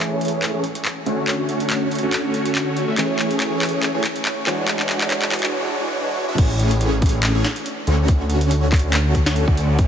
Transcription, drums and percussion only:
0.21 closed hi-hat
0.25 closed hi-hat
0.28 closed hi-hat
0.42 clap, closed hi-hat
0.64 closed hi-hat
0.75 closed hi-hat
0.85 clap, closed hi-hat
1.06 closed hi-hat
1.28 clap, closed hi-hat
1.49 closed hi-hat
1.60 closed hi-hat
1.70 clap, closed hi-hat
1.91 closed hi-hat
1.95 closed hi-hat
1.99 closed hi-hat
2.13 clap, closed hi-hat
2.34 closed hi-hat
2.46 closed hi-hat
2.55 clap, closed hi-hat
2.77 closed hi-hat
2.98 clap, closed hi-hat
3.19 clap, closed hi-hat
3.31 closed hi-hat
3.40 clap, closed hi-hat
3.62 clap, closed hi-hat
3.66 closed hi-hat
3.69 closed hi-hat
3.83 clap, closed hi-hat
4.04 clap, closed hi-hat
4.16 closed hi-hat
4.25 clap, closed hi-hat
4.47 clap, closed hi-hat
4.68 clap, closed hi-hat
4.80 clap
4.89 clap, closed hi-hat
5.01 clap, closed hi-hat
5.11 clap, closed hi-hat
5.22 clap
5.32 clap, closed hi-hat
5.36 closed hi-hat
5.39 closed hi-hat
5.43 clap
6.38 kick, closed hi-hat, crash
6.59 closed hi-hat
6.71 closed hi-hat
6.81 closed hi-hat
7.02 kick, closed hi-hat
7.06 closed hi-hat
7.09 closed hi-hat
7.23 clap, closed hi-hat
7.45 snare, closed hi-hat
7.56 closed hi-hat
7.66 closed hi-hat
7.87 closed hi-hat
8.08 kick, closed hi-hat
8.30 closed hi-hat
8.41 closed hi-hat
8.51 closed hi-hat
8.72 kick, clap, closed hi-hat
8.76 closed hi-hat
8.79 closed hi-hat
8.93 clap, closed hi-hat
9.15 kick, closed hi-hat
9.26 snare, closed hi-hat
9.36 closed hi-hat
9.48 kick
9.57 closed hi-hat
9.79 kick, closed hi-hat

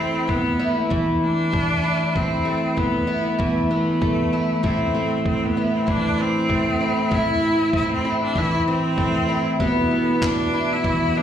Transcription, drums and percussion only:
0.29 kick
0.91 kick
1.53 kick
2.16 kick
2.78 kick
3.40 kick
4.02 kick
4.64 kick
5.26 kick
5.88 kick
6.50 kick
7.12 kick
7.73 kick
8.36 kick
8.98 kick
9.60 kick
10.22 kick, clap
10.84 kick

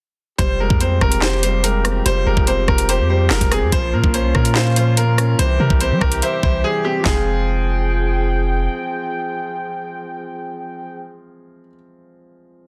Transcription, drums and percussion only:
0.39 kick, closed hi-hat
0.70 kick
0.80 closed hi-hat
1.01 kick, cross-stick
1.12 closed hi-hat
1.22 snare, clap
1.43 closed hi-hat
1.64 closed hi-hat
1.85 cross-stick, closed hi-hat
2.06 closed hi-hat
2.37 kick
2.47 closed hi-hat
2.68 kick, cross-stick
2.78 closed hi-hat
2.89 closed hi-hat
3.31 snare, clap
3.41 kick, closed hi-hat
3.51 cross-stick, closed hi-hat
3.72 kick, closed hi-hat
4.04 kick
4.14 closed hi-hat
4.35 kick, cross-stick
4.45 closed hi-hat
4.56 snare, clap
4.76 closed hi-hat
4.97 closed hi-hat
5.18 cross-stick, closed hi-hat
5.39 closed hi-hat
5.70 kick
5.81 closed hi-hat
6.01 kick, cross-stick
6.12 closed hi-hat
6.22 closed hi-hat
6.43 kick
7.06 kick, snare, clap

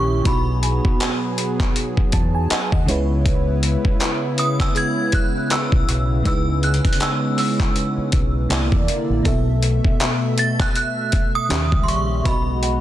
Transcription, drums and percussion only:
0.25 kick, closed hi-hat
0.63 closed hi-hat
0.85 kick
1.00 clap, closed hi-hat
1.38 closed hi-hat
1.60 kick, clap
1.76 closed hi-hat
1.97 kick
2.12 kick, closed hi-hat
2.50 clap, closed hi-hat
2.72 kick
2.88 closed hi-hat
3.26 kick, closed hi-hat
3.63 closed hi-hat
3.85 kick
4.00 clap, closed hi-hat
4.38 closed hi-hat
4.60 kick, clap
4.76 closed hi-hat
5.12 kick, closed hi-hat
5.50 clap, closed hi-hat
5.72 kick
5.89 closed hi-hat
6.25 kick, closed hi-hat
6.63 closed hi-hat
6.74 closed hi-hat
6.85 kick, closed hi-hat
6.93 closed hi-hat
7.00 clap, closed hi-hat
7.38 open hi-hat
7.60 kick, clap
7.76 closed hi-hat
8.12 kick, closed hi-hat
8.50 clap, closed hi-hat
8.72 kick
8.88 closed hi-hat
9.25 kick, closed hi-hat
9.63 closed hi-hat
9.85 kick
10.00 clap, closed hi-hat
10.38 closed hi-hat
10.60 kick, clap
10.76 closed hi-hat
11.12 kick, closed hi-hat
11.50 clap, closed hi-hat
11.72 kick
11.88 closed hi-hat
12.25 kick, closed hi-hat
12.63 closed hi-hat

